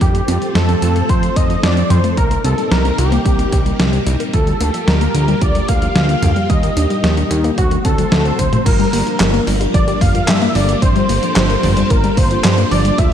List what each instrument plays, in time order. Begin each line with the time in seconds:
0.01 analog synth bass F2, synth arpeggio sound F3, string machine F3 A3 C4 A4 C5, analog synth lead G4, kick, closed hi-hat
0.15 synth arpeggio sound A3, closed hi-hat
0.28 analog synth bass F2, synth arpeggio sound C4, closed hi-hat
0.41 synth arpeggio sound F3, closed hi-hat
0.55 analog synth bass F2, synth arpeggio sound A3, analog synth lead A4, snare, closed hi-hat
0.69 synth arpeggio sound C4, closed hi-hat
0.82 analog synth bass F2, synth arpeggio sound F3, closed hi-hat
0.96 synth arpeggio sound A3, closed hi-hat
1.09 analog synth bass F2, synth arpeggio sound F3, analog synth lead C5, kick, closed hi-hat
1.23 synth arpeggio sound A3, closed hi-hat
1.36 analog synth bass F2, synth arpeggio sound C4, analog synth lead D#5, kick, closed hi-hat
1.50 synth arpeggio sound F3, closed hi-hat
1.63 analog synth bass F2, synth arpeggio sound A3, analog synth lead D5, snare, closed hi-hat
1.77 synth arpeggio sound C4, closed hi-hat
1.90 analog synth bass F2, synth arpeggio sound F3, analog synth lead C5, closed hi-hat, mid tom
2.04 synth arpeggio sound A3, closed hi-hat
2.17 analog synth bass C2, synth arpeggio sound G3, string machine G3 A#3 C4 D#4 A#4, analog synth lead A#4, kick, closed hi-hat
2.31 synth arpeggio sound A#3, closed hi-hat
2.44 analog synth bass C2, synth arpeggio sound C4, analog synth lead A4, closed hi-hat
2.58 synth arpeggio sound G3, closed hi-hat
2.71 analog synth bass C2, synth arpeggio sound A#3, analog synth lead A#4, snare, closed hi-hat
2.85 synth arpeggio sound C4, closed hi-hat
2.98 analog synth bass C2, synth arpeggio sound G3, analog synth lead G4, closed hi-hat
3.12 synth arpeggio sound A#3, closed hi-hat
3.25 analog synth bass C2, synth arpeggio sound G3, kick, closed hi-hat
3.39 synth arpeggio sound A#3, closed hi-hat
3.52 analog synth bass C2, synth arpeggio sound C4, kick, closed hi-hat
3.66 synth arpeggio sound G3, closed hi-hat
3.79 analog synth bass C2, synth arpeggio sound A#3, snare, closed hi-hat
3.93 synth arpeggio sound C4, closed hi-hat
4.06 analog synth bass C2, synth arpeggio sound G3, closed hi-hat
4.20 synth arpeggio sound A#3, closed hi-hat
4.33 analog synth bass D2, synth arpeggio sound F3, string machine G3 A#3 F4 G4, analog synth lead A4, kick, closed hi-hat
4.47 synth arpeggio sound G3, closed hi-hat
4.61 analog synth bass D2, synth arpeggio sound A#3, closed hi-hat
4.74 synth arpeggio sound F3, closed hi-hat
4.87 analog synth bass D2, synth arpeggio sound G3, analog synth lead A#4, snare, closed hi-hat
5.01 synth arpeggio sound A#3, closed hi-hat
5.15 analog synth bass D2, synth arpeggio sound F3, closed hi-hat
5.28 synth arpeggio sound G3, closed hi-hat
5.41 analog synth bass D2, synth arpeggio sound F3, analog synth lead D5, kick, closed hi-hat
5.55 synth arpeggio sound G3, closed hi-hat
5.68 analog synth bass D2, synth arpeggio sound A#3, analog synth lead F5, kick, closed hi-hat
5.82 synth arpeggio sound F3, closed hi-hat
5.96 analog synth bass D2, synth arpeggio sound G3, snare, closed hi-hat
6.09 synth arpeggio sound A#3, closed hi-hat
6.23 analog synth bass D2, synth arpeggio sound F3, closed hi-hat, mid tom
6.36 synth arpeggio sound G3, closed hi-hat
6.49 analog synth bass D#2, synth arpeggio sound G3, string machine D#4, analog synth lead D#5, kick, closed hi-hat
6.63 synth arpeggio sound A#3, closed hi-hat
6.77 analog synth bass D#2, synth arpeggio sound D4, closed hi-hat
6.90 synth arpeggio sound G3, closed hi-hat
7.04 analog synth bass D#2, synth arpeggio sound A#3, snare, closed hi-hat
7.17 synth arpeggio sound D4, closed hi-hat
7.31 analog synth bass D#2, synth arpeggio sound G3, closed hi-hat
7.44 synth arpeggio sound A#3, closed hi-hat
7.58 analog synth bass D2, synth arpeggio sound F#3, string machine A3 C4 F#4 C5, analog synth lead F#4, kick, closed hi-hat
7.71 synth arpeggio sound A3, closed hi-hat
7.85 analog synth bass D2, synth arpeggio sound C4, analog synth lead A4, kick, closed hi-hat
7.98 synth arpeggio sound F#3, closed hi-hat
8.12 analog synth bass D2, synth arpeggio sound A3, snare, closed hi-hat
8.25 synth arpeggio sound C4, closed hi-hat
8.39 analog synth bass D2, synth arpeggio sound F#3, analog synth lead C5, kick, closed hi-hat, high tom
8.52 synth arpeggio sound A3, closed hi-hat, mid tom
8.65 analog synth bass G1, synth arpeggio sound F3, string machine G3 A#3 D4 F4 A#4, analog synth lead A#4, kick, closed hi-hat, crash
8.79 synth arpeggio sound G3, closed hi-hat
8.93 analog synth bass G1, synth arpeggio sound A#3, open hi-hat
9.06 synth arpeggio sound F3, closed hi-hat
9.20 analog synth bass G1, synth arpeggio sound G3, snare, clap, closed hi-hat
9.33 synth arpeggio sound A#3, closed hi-hat
9.47 analog synth bass G1, synth arpeggio sound F3, open hi-hat
9.60 synth arpeggio sound G3, closed hi-hat
9.74 analog synth bass G1, synth arpeggio sound F3, analog synth lead D5, kick, closed hi-hat
9.88 synth arpeggio sound G3, closed hi-hat
10.01 analog synth bass G1, synth arpeggio sound A#3, analog synth lead F5, kick, mid tom, open hi-hat
10.15 synth arpeggio sound F3, closed hi-hat
10.28 analog synth bass G2, synth arpeggio sound G3, analog synth lead E5, snare, clap, closed hi-hat
10.42 synth arpeggio sound A#3, closed hi-hat
10.55 analog synth bass G1, synth arpeggio sound F3, analog synth lead D5, open hi-hat
10.69 synth arpeggio sound G3, closed hi-hat
10.82 analog synth bass G1, synth arpeggio sound F3, string machine A4, analog synth lead C5, kick, closed hi-hat
10.96 synth arpeggio sound G3, closed hi-hat
11.09 analog synth bass G1, synth arpeggio sound A#3, open hi-hat
11.23 synth arpeggio sound F3, closed hi-hat
11.36 analog synth bass G1, synth arpeggio sound G3, snare, clap, closed hi-hat
11.50 synth arpeggio sound A#3, closed hi-hat
11.63 analog synth bass G1, synth arpeggio sound F3, mid tom, open hi-hat
11.77 synth arpeggio sound G3, closed hi-hat
11.90 analog synth bass G1, synth arpeggio sound F3, analog synth lead A#4, kick, closed hi-hat
12.04 synth arpeggio sound G3, closed hi-hat
12.17 analog synth bass G1, synth arpeggio sound A#3, analog synth lead C5, kick, open hi-hat
12.31 synth arpeggio sound F3, closed hi-hat
12.44 analog synth bass G2, synth arpeggio sound G3, snare, clap, closed hi-hat
12.58 synth arpeggio sound A#3, closed hi-hat
12.71 analog synth bass G1, synth arpeggio sound F3, analog synth lead D5, open hi-hat
12.85 synth arpeggio sound G3, closed hi-hat
12.98 analog synth bass D2, synth arpeggio sound F3, string machine A3 C4 C5, analog synth lead E5, kick, closed hi-hat